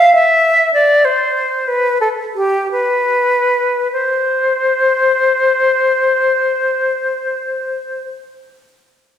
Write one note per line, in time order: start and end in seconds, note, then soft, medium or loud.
0.00 0.14 F5 loud
0.15 0.73 E5 loud
0.74 1.06 D5 medium
1.05 1.69 C5 medium
1.68 2.00 B4 medium
2.01 2.09 A4 medium
2.35 2.71 G4 medium
2.71 3.91 B4 medium
3.93 8.03 C5 medium